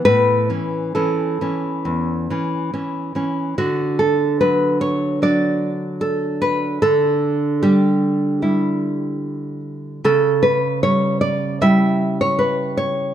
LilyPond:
\new Staff \with { instrumentName = "Nylon-string guitar" } { \time 4/4 \key d \major \tempo 4 = 74 << { b'4 a'2~ a'8 r8 | fis'8 a'8 b'8 cis''8 d''4 a'8 b'8 | a'4 g'2~ g'8 r8 | a'8 b'8 cis''8 d''8 e''8. cis''16 b'8 cis''8 | } \\ { a,8 <e cis'>8 <e cis'>8 <e cis'>8 e,8 <e cis'>8 <e cis'>8 <e cis'>8 | d4 fis4 <fis d'>2 | d4 g4 <g e'>2 | cis4 g4 <g e'>2 | } >> }